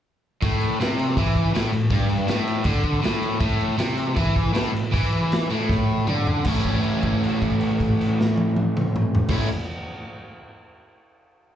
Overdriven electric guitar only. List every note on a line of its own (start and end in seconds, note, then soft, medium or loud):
0.42 0.80 A2 loud
0.81 1.17 C3 loud
1.18 1.54 E3 loud
1.54 1.72 A2 loud
1.73 1.89 A2 medium
1.91 2.29 G2 loud
2.27 2.65 A2 loud
2.65 3.02 D3 loud
3.02 3.39 A2 loud
3.40 3.78 A2 loud
3.78 4.16 C3 loud
4.17 4.53 E3 loud
4.54 4.73 A2 loud
4.74 4.90 A2 medium
4.92 5.50 E3 loud
5.50 6.07 A2 loud
6.08 6.46 D3 loud
6.46 9.28 A2 loud
6.46 9.30 E3 loud
6.46 9.30 A3 loud
6.46 9.31 C#4 loud
6.50 9.32 E4 loud
9.29 9.46 A2 medium
9.29 9.46 E3 medium
9.29 9.47 A3 loud
9.29 9.47 C#4 medium
9.29 9.47 E4 medium